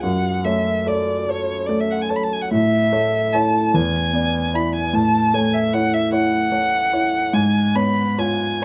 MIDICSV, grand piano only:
0, 0, Header, 1, 2, 480
1, 0, Start_track
1, 0, Key_signature, 3, "minor"
1, 0, Tempo, 825309
1, 14, Time_signature, 6, 3, 24, 8
1, 1934, Tempo, 802139
1, 4334, Tempo, 858369
1, 5068, End_track
2, 0, Start_track
2, 0, Title_t, "Grand piano"
2, 0, Program_c, 0, 0
2, 0, Control_c, 0, 64, 127
2, 18, Note_on_c, 0, 42, 58
2, 24, Control_c, 0, 64, 0
2, 107, Control_c, 0, 64, 127
2, 262, Note_on_c, 0, 57, 40
2, 266, Note_on_c, 0, 73, 45
2, 478, Note_off_c, 0, 57, 0
2, 480, Note_off_c, 0, 73, 0
2, 503, Note_on_c, 0, 69, 42
2, 503, Note_on_c, 0, 73, 42
2, 718, Note_off_c, 0, 69, 0
2, 718, Note_off_c, 0, 73, 0
2, 746, Note_on_c, 0, 69, 43
2, 750, Note_on_c, 0, 73, 46
2, 958, Note_off_c, 0, 69, 0
2, 960, Note_off_c, 0, 73, 0
2, 982, Note_on_c, 0, 57, 42
2, 985, Note_on_c, 0, 73, 43
2, 1197, Note_off_c, 0, 57, 0
2, 1199, Note_off_c, 0, 73, 0
2, 1224, Note_on_c, 0, 69, 38
2, 1224, Note_on_c, 0, 73, 47
2, 1438, Note_off_c, 0, 42, 0
2, 1439, Note_off_c, 0, 69, 0
2, 1439, Note_off_c, 0, 73, 0
2, 1461, Note_on_c, 0, 45, 58
2, 1470, Control_c, 0, 64, 0
2, 1577, Control_c, 0, 64, 127
2, 1701, Note_on_c, 0, 57, 45
2, 1702, Note_on_c, 0, 73, 47
2, 1912, Note_off_c, 0, 57, 0
2, 1912, Note_off_c, 0, 73, 0
2, 1943, Note_on_c, 0, 64, 37
2, 1946, Note_on_c, 0, 73, 43
2, 2154, Note_off_c, 0, 45, 0
2, 2156, Note_off_c, 0, 64, 0
2, 2158, Note_off_c, 0, 73, 0
2, 2183, Note_on_c, 0, 40, 60
2, 2186, Control_c, 0, 64, 0
2, 2271, Control_c, 0, 64, 127
2, 2418, Note_on_c, 0, 59, 42
2, 2423, Note_on_c, 0, 74, 44
2, 2633, Note_off_c, 0, 59, 0
2, 2635, Note_off_c, 0, 74, 0
2, 2659, Note_on_c, 0, 64, 43
2, 2659, Note_on_c, 0, 74, 46
2, 2872, Note_off_c, 0, 64, 0
2, 2873, Note_off_c, 0, 74, 0
2, 2877, Note_off_c, 0, 40, 0
2, 2896, Note_on_c, 0, 45, 55
2, 2906, Control_c, 0, 64, 0
2, 3008, Control_c, 0, 64, 127
2, 3138, Note_on_c, 0, 57, 47
2, 3141, Note_on_c, 0, 73, 46
2, 3351, Note_off_c, 0, 57, 0
2, 3352, Note_off_c, 0, 73, 0
2, 3375, Note_on_c, 0, 64, 42
2, 3379, Note_on_c, 0, 73, 46
2, 3586, Note_off_c, 0, 64, 0
2, 3588, Note_off_c, 0, 73, 0
2, 3606, Note_on_c, 0, 64, 47
2, 3609, Note_on_c, 0, 73, 51
2, 3819, Note_off_c, 0, 64, 0
2, 3821, Note_off_c, 0, 73, 0
2, 3843, Note_on_c, 0, 57, 41
2, 3846, Note_on_c, 0, 73, 42
2, 4061, Note_off_c, 0, 57, 0
2, 4062, Note_off_c, 0, 73, 0
2, 4088, Note_on_c, 0, 64, 42
2, 4093, Note_on_c, 0, 73, 41
2, 4308, Note_off_c, 0, 45, 0
2, 4309, Note_off_c, 0, 64, 0
2, 4311, Note_off_c, 0, 73, 0
2, 4333, Note_on_c, 0, 44, 64
2, 4341, Control_c, 0, 64, 0
2, 4434, Control_c, 0, 64, 127
2, 4565, Note_on_c, 0, 59, 41
2, 4571, Note_on_c, 0, 73, 47
2, 4787, Note_off_c, 0, 59, 0
2, 4790, Note_off_c, 0, 73, 0
2, 4808, Note_on_c, 0, 65, 42
2, 4808, Note_on_c, 0, 73, 45
2, 5028, Note_off_c, 0, 65, 0
2, 5028, Note_off_c, 0, 73, 0
2, 5049, Note_on_c, 0, 65, 41
2, 5068, Note_off_c, 0, 44, 0
2, 5068, Note_off_c, 0, 65, 0
2, 5068, End_track
0, 0, End_of_file